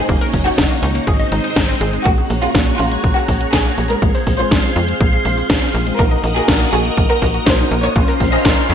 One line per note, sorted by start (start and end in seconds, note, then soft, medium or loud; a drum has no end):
0.00 1.04 A#3 medium
0.00 2.02 D#4 medium
0.00 0.35 G#4 medium
0.09 0.18 F#1 loud
0.09 0.15 A#3 medium
0.09 1.06 C#4 medium
0.09 1.06 F#4 medium
0.09 1.06 C#5 medium
0.09 kick loud
0.09 closed hi-hat medium
0.21 0.27 A#4 loud
0.21 closed hi-hat soft
0.33 0.52 F#1 medium
0.33 0.44 C#4 medium
0.33 kick medium
0.33 closed hi-hat medium
0.46 0.52 D#4 medium
0.46 0.75 F#4 medium
0.46 closed hi-hat medium
0.58 0.67 F#1 medium
0.58 0.68 D#4 medium
0.58 kick loud
0.58 snare loud
0.58 closed hi-hat medium
0.70 0.82 A#3 medium
0.70 closed hi-hat soft
0.82 1.01 C#2 loud
0.82 0.93 D#4 loud
0.82 closed hi-hat medium
0.95 1.07 A#3 medium
0.95 closed hi-hat medium
1.07 1.25 G#1 medium
1.07 2.05 G#3 medium
1.07 2.05 C4 medium
1.07 1.13 G#4 medium
1.07 2.05 C5 medium
1.07 2.05 D#5 medium
1.07 kick loud
1.07 closed hi-hat medium
1.20 1.29 D#5 medium
1.20 closed hi-hat soft
1.32 1.41 G#1 medium
1.32 1.42 D#4 loud
1.32 closed hi-hat medium
1.44 1.50 D#4 medium
1.44 closed hi-hat medium
1.56 1.74 G#1 loud
1.56 1.66 D#4 medium
1.56 kick loud
1.56 snare loud
1.56 closed hi-hat medium
1.69 1.75 C4 loud
1.69 closed hi-hat soft
1.81 1.99 G#1 loud
1.81 1.91 G#4 medium
1.81 closed hi-hat loud
1.93 2.05 G#3 medium
1.93 closed hi-hat medium
2.05 2.24 A#1 loud
2.05 2.12 G#3 medium
2.05 2.40 A#3 medium
2.05 2.40 C#4 medium
2.05 2.35 F#4 medium
2.05 2.40 F#4 medium
2.05 5.95 G#4 medium
2.05 2.40 G#4 medium
2.05 4.00 C#5 medium
2.05 4.00 F#5 medium
2.05 4.00 A#5 medium
2.05 kick loud
2.05 closed hi-hat medium
2.18 2.24 G#4 loud
2.18 closed hi-hat soft
2.30 2.48 A#1 medium
2.30 2.40 A#3 medium
2.30 open hi-hat loud
2.42 2.76 A#3 medium
2.42 2.76 C#4 medium
2.42 2.49 C#4 medium
2.42 2.71 F4 medium
2.42 2.76 F#4 medium
2.42 2.76 G#4 loud
2.42 closed hi-hat medium
2.55 2.73 A#1 medium
2.55 2.65 C#4 medium
2.55 kick loud
2.55 snare loud
2.55 closed hi-hat medium
2.67 2.79 G#3 medium
2.67 closed hi-hat soft
2.79 2.97 A#1 medium
2.79 3.99 A#3 medium
2.79 2.89 C#4 loud
2.79 3.99 C#4 medium
2.79 3.08 F4 medium
2.79 3.99 F#4 medium
2.79 3.99 G#4 medium
2.79 open hi-hat loud
2.92 3.03 G#3 medium
2.92 closed hi-hat medium
3.04 3.13 A#1 medium
3.04 3.10 F#4 medium
3.04 kick loud
3.04 closed hi-hat medium
3.16 3.45 F#4 medium
3.16 3.26 A#4 medium
3.16 closed hi-hat soft
3.28 3.47 A#1 medium
3.28 3.39 C#4 medium
3.28 kick medium
3.28 open hi-hat loud
3.41 3.47 C#4 medium
3.41 closed hi-hat medium
3.53 3.71 A#1 medium
3.53 3.63 C#4 medium
3.53 3.82 G#4 loud
3.53 kick loud
3.53 snare loud
3.53 closed hi-hat medium
3.65 3.71 A#3 loud
3.65 closed hi-hat soft
3.78 3.96 A#1 medium
3.78 3.88 F#4 medium
3.78 open hi-hat loud
3.90 4.01 G#3 medium
3.90 4.29 A#4 medium
3.90 closed hi-hat medium
4.02 4.11 A#1 medium
4.02 4.36 G#3 medium
4.02 4.08 G#3 medium
4.02 4.36 C4 medium
4.02 4.36 F4 medium
4.02 4.36 G#4 medium
4.02 5.97 C5 medium
4.02 5.97 F5 medium
4.02 5.97 C6 medium
4.02 kick loud
4.02 closed hi-hat medium
4.15 4.21 C5 loud
4.15 open hi-hat medium
4.27 4.45 A#1 medium
4.27 4.37 C4 medium
4.27 kick medium
4.27 open hi-hat loud
4.39 4.73 G#3 medium
4.39 4.73 C4 medium
4.39 4.73 F4 medium
4.39 4.45 F4 medium
4.39 4.73 G#4 loud
4.39 4.68 C5 medium
4.39 closed hi-hat medium
4.51 4.60 A#1 medium
4.51 4.62 F4 medium
4.51 kick loud
4.51 snare loud
4.51 closed hi-hat medium
4.64 4.76 G#3 medium
4.64 closed hi-hat soft
4.76 4.94 F2 loud
4.76 5.96 G#3 medium
4.76 5.96 C4 medium
4.76 4.86 F4 loud
4.76 5.96 F4 medium
4.76 5.96 G#4 medium
4.76 open hi-hat medium
4.88 5.00 G#3 medium
4.88 closed hi-hat medium
5.01 5.19 A#1 medium
5.01 5.07 G#4 medium
5.01 kick loud
5.01 closed hi-hat medium
5.13 5.23 F5 medium
5.13 closed hi-hat soft
5.25 5.43 A#1 medium
5.25 5.35 F4 medium
5.25 open hi-hat loud
5.37 5.43 F4 medium
5.37 open hi-hat medium
5.50 5.59 A#1 medium
5.50 5.60 F4 medium
5.50 kick loud
5.50 snare loud
5.50 closed hi-hat medium
5.62 5.68 C4 loud
5.62 closed hi-hat soft
5.74 5.92 A#1 loud
5.74 5.84 G#4 medium
5.74 open hi-hat loud
5.87 5.98 G#3 medium
5.87 closed hi-hat medium
5.99 6.17 A#1 loud
5.99 6.05 A#3 medium
5.99 6.33 A#3 medium
5.99 6.33 D#4 medium
5.99 6.33 F#4 medium
5.99 6.28 A#4 loud
5.99 8.74 A#4 medium
5.99 6.33 A#4 medium
5.99 7.94 D#5 medium
5.99 7.94 F#5 medium
5.99 7.94 D#6 medium
5.99 kick loud
5.99 closed hi-hat soft
6.11 6.17 D#5 loud
6.11 closed hi-hat soft
6.24 6.42 A#1 medium
6.24 6.34 D#4 medium
6.24 open hi-hat medium
6.36 6.70 A#3 medium
6.36 6.70 D#4 medium
6.36 6.42 F#4 medium
6.36 6.70 F#4 medium
6.36 6.65 G#4 medium
6.36 6.70 A#4 loud
6.36 closed hi-hat soft
6.48 6.66 A#1 medium
6.48 6.58 F#4 medium
6.48 kick loud
6.48 snare loud
6.48 closed hi-hat medium
6.60 6.72 A#3 medium
6.60 closed hi-hat soft
6.73 6.91 A#1 medium
6.73 7.93 A#3 medium
6.73 7.93 D#4 medium
6.73 7.93 F#4 medium
6.73 6.83 F#4 loud
6.73 7.02 G#4 medium
6.73 7.93 A#4 medium
6.73 open hi-hat loud
6.85 6.97 A#3 medium
6.85 closed hi-hat soft
6.97 7.06 A#1 medium
6.97 7.03 A#4 medium
6.97 kick loud
6.97 closed hi-hat medium
7.10 7.39 A#4 loud
7.10 7.20 F#5 medium
7.10 closed hi-hat soft
7.22 7.40 A#1 loud
7.22 7.32 F#4 loud
7.22 kick medium
7.22 open hi-hat medium
7.34 7.40 F#4 medium
7.34 closed hi-hat medium
7.46 7.65 A#1 medium
7.46 7.57 F#4 medium
7.46 7.76 C5 loud
7.46 kick loud
7.46 snare loud
7.46 closed hi-hat medium
7.59 7.65 D#4 loud
7.59 closed hi-hat soft
7.71 7.89 A#1 medium
7.71 7.81 A#4 medium
7.71 open hi-hat loud
7.83 7.95 A#3 medium
7.83 8.22 C#5 medium
7.83 closed hi-hat medium
7.96 8.05 A#1 loud
7.96 8.02 A#3 medium
7.96 8.74 C#4 medium
7.96 8.30 C#4 medium
7.96 8.30 F4 medium
7.96 8.30 A#4 medium
7.96 8.30 C5 medium
7.96 8.74 F5 medium
7.96 8.74 C6 medium
7.96 kick loud
7.96 closed hi-hat soft
8.08 8.14 A#4 loud
8.08 open hi-hat medium
8.20 8.38 A#1 medium
8.20 8.30 C4 medium
8.20 kick medium
8.20 open hi-hat loud
8.32 8.67 C#4 medium
8.32 8.39 C#4 medium
8.32 8.67 F4 medium
8.32 8.67 A#4 medium
8.32 8.67 C5 loud
8.32 8.62 D#5 loud
8.32 closed hi-hat soft
8.45 8.54 A#1 medium
8.45 8.55 C#4 medium
8.45 kick loud
8.45 snare loud
8.45 closed hi-hat medium
8.57 8.69 A#3 medium
8.57 closed hi-hat soft
8.70 8.74 F2 loud
8.70 8.74 C#4 medium
8.70 8.74 C#4 loud
8.70 8.74 F4 medium
8.70 8.74 A#4 medium
8.70 8.74 C5 medium
8.70 open hi-hat loud